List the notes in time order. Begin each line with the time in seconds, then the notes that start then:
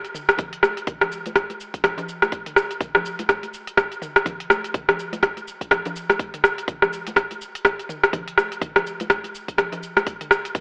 0.05 closed hi-hat, shaker
0.14 mid tom, shaker
0.29 cross-stick, closed hi-hat, shaker
0.38 kick, closed hi-hat, mid tom, low conga, shaker
0.53 closed hi-hat
0.63 cross-stick, high conga, shaker
0.77 closed hi-hat, shaker
0.87 kick, closed hi-hat, mid tom, shaker
1.01 cross-stick, closed hi-hat, high conga, low conga, shaker
1.12 shaker
1.26 closed hi-hat, high conga, shaker
1.36 kick, cross-stick, closed hi-hat, shaker
1.50 closed hi-hat, high conga, shaker
1.60 shaker
1.74 kick, closed hi-hat, shaker
1.84 kick, cross-stick, closed hi-hat, low conga, shaker
1.98 closed hi-hat, low conga, shaker
2.09 shaker
2.22 cross-stick, closed hi-hat, high conga, shaker
2.32 kick, closed hi-hat, shaker
2.46 closed hi-hat, mid tom, shaker
2.56 cross-stick, shaker
2.71 closed hi-hat, shaker
2.81 kick, closed hi-hat, mid tom, shaker
2.94 cross-stick, high conga, low conga, shaker
3.05 shaker
3.19 closed hi-hat, high conga, shaker
3.29 kick, cross-stick, closed hi-hat, shaker
3.43 closed hi-hat, high conga, shaker
3.54 shaker
3.67 closed hi-hat, shaker
3.77 kick, cross-stick, closed hi-hat, shaker
3.92 closed hi-hat, shaker
4.02 mid tom, shaker
4.16 cross-stick, closed hi-hat, shaker
4.25 kick, closed hi-hat, mid tom, low conga, shaker
4.40 closed hi-hat
4.50 cross-stick, high conga, shaker
4.64 closed hi-hat, shaker
4.74 kick, closed hi-hat, mid tom, shaker
4.88 cross-stick, closed hi-hat, high conga, low conga, shaker
4.99 shaker
5.13 closed hi-hat, high conga, shaker
5.23 kick, cross-stick, closed hi-hat, shaker
5.37 closed hi-hat, high conga, shaker
5.48 shaker
5.61 kick, closed hi-hat, shaker
5.71 kick, cross-stick, closed hi-hat, low conga, shaker
5.85 closed hi-hat, low conga, shaker
5.96 shaker
6.09 cross-stick, closed hi-hat, high conga, shaker
6.19 kick, closed hi-hat, shaker
6.34 closed hi-hat, mid tom, shaker
6.44 cross-stick, shaker
6.58 closed hi-hat, shaker
6.68 kick, closed hi-hat, mid tom, shaker
6.82 cross-stick, high conga, low conga, shaker
6.93 shaker
7.07 closed hi-hat, high conga, shaker
7.16 kick, cross-stick, closed hi-hat, shaker
7.31 closed hi-hat, high conga, shaker
7.41 shaker
7.55 closed hi-hat, shaker
7.65 kick, cross-stick, closed hi-hat, shaker
7.79 closed hi-hat, shaker
7.89 mid tom, shaker
8.04 cross-stick, closed hi-hat, shaker
8.13 kick, closed hi-hat, mid tom, low conga, shaker
8.28 closed hi-hat
8.38 cross-stick, high conga, shaker
8.52 closed hi-hat, shaker
8.62 kick, closed hi-hat, mid tom, shaker
8.76 cross-stick, closed hi-hat, high conga, low conga, shaker
8.87 shaker
9.00 closed hi-hat, high conga, shaker
9.10 kick, cross-stick, closed hi-hat, shaker
9.24 closed hi-hat, high conga, shaker
9.35 shaker
9.48 kick, closed hi-hat, shaker
9.58 kick, cross-stick, closed hi-hat, low conga, shaker
9.72 closed hi-hat, low conga, shaker
9.83 shaker
9.96 cross-stick, closed hi-hat, high conga, shaker
10.07 kick, closed hi-hat, shaker
10.21 closed hi-hat, mid tom, shaker
10.31 cross-stick, shaker
10.45 closed hi-hat, shaker
10.55 kick, closed hi-hat, mid tom, shaker